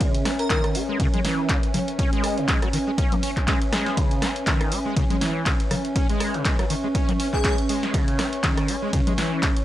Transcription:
Already playing: C#4 B4 E5 G#5
0.01 C#3, kick, closed hi-hat, ride
0.15 closed hi-hat
0.25 C#4, cross-stick, snare, open hi-hat
0.39 A#4, closed hi-hat
0.50 D#3 A#4, kick, clap, closed hi-hat, ride
0.64 cross-stick, closed hi-hat
0.75 G#3, open hi-hat
0.89 G#3
1.00 C#3, kick, closed hi-hat, ride
1.14 G#3, closed hi-hat, low conga
1.25 E3, snare, open hi-hat
1.49 C#3, kick, clap, closed hi-hat, ride
1.63 closed hi-hat
1.74 C#3, open hi-hat, low conga
1.88 closed hi-hat
1.99 C#4, kick, closed hi-hat, ride
2.13 G#3, closed hi-hat
2.24 cross-stick, open hi-hat
2.38 C#3, closed hi-hat
2.48 G#3, kick, clap, closed hi-hat, ride
2.62 F#3, cross-stick, closed hi-hat
2.73 D#3, open hi-hat
2.87 G#3
2.98 C#4, kick, closed hi-hat, ride
3.12 G#3, closed hi-hat, low conga
3.23 C#4, open hi-hat
3.37 kick, clap, closed hi-hat
3.48 G#3, kick, clap, closed hi-hat, ride
3.62 closed hi-hat
3.72 G#3, cross-stick, snare, open hi-hat
3.86 snare, closed hi-hat
3.97 C#3, kick, closed hi-hat, ride
4.11 closed hi-hat
4.22 C#4, cross-stick, snare, open hi-hat
4.36 closed hi-hat
4.47 D#3, kick, clap, closed hi-hat, ride
4.61 cross-stick, closed hi-hat
4.72 G#3, open hi-hat
4.85 G#3
4.96 C#3 C#4, kick, closed hi-hat, ride
5.10 G#3, closed hi-hat, low conga
5.21 E3, snare, open hi-hat
5.46 C#3, kick, clap, closed hi-hat, ride
5.60 closed hi-hat
5.71 C#3, cross-stick, open hi-hat, low conga
5.85 closed hi-hat
5.96 C#4 C#6, kick, closed hi-hat, ride
6.09 G#3, closed hi-hat
6.20 cross-stick, open hi-hat
6.34 C#3, closed hi-hat
6.45 G#3, kick, clap, closed hi-hat, ride
6.59 F#3, cross-stick, closed hi-hat
6.70 D#3, open hi-hat
6.84 G#3
6.95 C#4, kick, closed hi-hat, ride
7.09 G#3, closed hi-hat, low conga
7.20 C#4, open hi-hat
7.33 G#4, kick, clap
7.44 G#3 G#4, kick, clap, closed hi-hat, ride
7.58 closed hi-hat
7.69 G#3, open hi-hat
7.83 snare, closed hi-hat
7.94 C#3, kick, closed hi-hat, ride
8.08 closed hi-hat
8.19 C#4, cross-stick, snare, open hi-hat
8.33 closed hi-hat
8.44 D#3, kick, clap, closed hi-hat, ride
8.57 cross-stick, closed hi-hat
8.68 G#3, open hi-hat
8.82 G#3
8.93 C#3, kick, closed hi-hat, ride
9.07 G#3, closed hi-hat, low conga
9.18 E3, snare, open hi-hat
9.43 C#3, kick, clap, closed hi-hat, ride
9.57 closed hi-hat

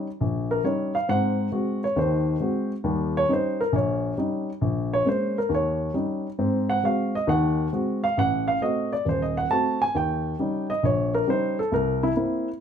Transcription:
0.21 A#1
0.51 A#4
0.64 G3 C#4 D#4 C#5
0.95 F5
1.09 G#2 C4 F#5
1.52 G#3 C4 F#4
1.84 C#5
1.96 D#2 D#3 C5
2.40 G#3 C4 F#4
2.84 D#2 G3
3.17 C#5
3.29 G3 C#4 D#4
3.33 C5
3.61 A#4
3.72 A#1 C#5
4.17 G3 C#4 D#4
4.61 A#1
4.93 C#5
5.05 G#3 A#3 C#4 C5
5.38 A#4
5.49 D#2
5.55 C#5
5.94 G3 C#4 D#4
6.39 G#2 C4
6.70 F#5
6.83 G#3 C4 F#4 F5
7.15 D#5
7.27 D#2 D#3 F#5
7.73 G#3 C4 F#4
8.04 F5
8.17 A1 F#5
8.48 F5
8.61 A3 C4 F#4 D#5
8.93 D5
9.05 D#1 C5
9.22 D#5
9.37 F#5
9.50 A3 C4 F#4 A5
9.82 G#5
9.95 D#2 G5
10.39 G3 C#4 D#4
10.70 D#5
10.83 A#1 C#5
11.14 A#4
11.27 G3 C#4 D#4 C5
11.59 A4
11.72 C2 A#4
12.03 E4
12.16 A#3 C4 E4

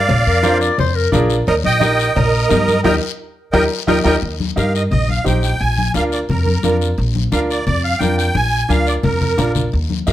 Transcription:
Already playing: D5 F5
0.09 A#1, cowbell, high conga, low conga, long guiro
0.27 F2 A#4
0.43 D4 F4 A#4 C5, cowbell, high conga, short guiro
0.61 D5, short guiro
0.78 F2 C5, cowbell, high conga, low conga, long guiro
0.95 A#4
1.12 A#1 D4 F4 G#4 A#4, cowbell, high conga, low conga, short guiro
1.30 short guiro
1.47 D#2 A#4 D#5, cowbell, high conga, long guiro
1.64 A#1 D#5 G5, high conga
1.80 D#4 G4 A#4, cowbell, high conga, short guiro
1.99 short guiro
2.15 A#1 A#4 D#5, cowbell, high conga, low conga, long guiro
2.49 G2 D#4 G4 A#4, cowbell, high conga, low timbale, short guiro
2.68 high conga, short guiro
2.84 D#2 D#4 G4 A#4 D#5 G5, high conga, high timbale, long guiro
3.52 D#2 D#4 G4 A#4 D#5 G5, high conga, high timbale, long guiro
3.87 D#2 D#4 G4 A#4 D#5 G5, high conga, high timbale, long guiro
4.04 D#2 D#4 G4 A#4 D#5 G5, high conga, high timbale, long guiro
4.22 D#2, high conga, long guiro
4.40 high conga
4.56 G2 D#4 G4 A#4 F5, high conga, short guiro
4.75 D#5, short guiro
4.91 A#1 D#5, high conga, low conga, long guiro
5.09 F5, high conga
5.24 A#1 D#4 G4 C5 G5, high conga, short guiro
5.43 G5, short guiro
5.60 A#1 G#5, high conga, long guiro
5.78 high conga
5.94 D2 D4 F4 A#4 F5, high conga, short guiro
6.12 D5, short guiro
6.29 F2 A#4, high conga, low conga, long guiro
6.46 high conga
6.63 F2 D4 F4 A#4, high conga, short guiro
6.81 short guiro
6.98 A#1, high conga, long guiro
7.15 high conga
7.32 D2 D4 F4 A#4 F5, high conga, short guiro
7.50 D5, short guiro
7.66 F2 D5, high conga, low conga, long guiro
7.84 F5
7.99 F2 D4 F4 A#4 G5, high conga, short guiro
8.18 G5, short guiro
8.34 A#1 G#5, high conga, long guiro
8.69 D2 D4 F4 A#4 F5, high conga, short guiro
8.87 D5, short guiro
9.03 F2 A#4, low conga, long guiro
9.21 low conga
9.37 A#1 D4 F4 A#4, low conga, short guiro
9.55 low conga, short guiro
9.72 D#2, high conga, long guiro
9.90 high conga
10.07 G2 D#4 G4 A#4 F5, high conga, short guiro

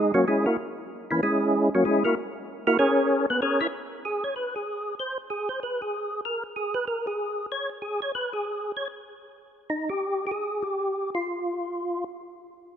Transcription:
Already playing: G#3 D#4 G#4
0.14 F#3 A#3 C#4 F#4
0.28 G#3 C#4 E4 G#4
0.46 A#3 E4 F#4 A#4
1.11 E3 A#3 C#4 E4
1.23 G#3 C#4 E4 G#4
1.75 F#3 A#3 C#4 F#4
1.85 G#3 C#4 E4 G#4
2.04 A#3 E4 F#4 A#4
2.67 A#3 E4 F#4 A#4
2.79 C#4 G#4 A#4 C#5
3.30 B3 B4
3.42 C#4 G#4 A#4 C#5
3.61 E4 A#4 C#5 E5
4.05 G#4
4.24 C#5
4.36 B4
4.56 G#4
5.00 C5
5.30 G#4
5.49 C5
5.63 B4
5.82 G#4
6.25 A#4
6.56 G#4
6.74 B4
6.88 A#4
7.07 G#4
7.52 C#5
7.82 G#4
8.02 C#5
8.15 B4
8.33 G#4
8.77 C#5
9.70 D#4
9.89 G4
10.27 G4
10.32 G#4
10.62 G4
11.15 F4

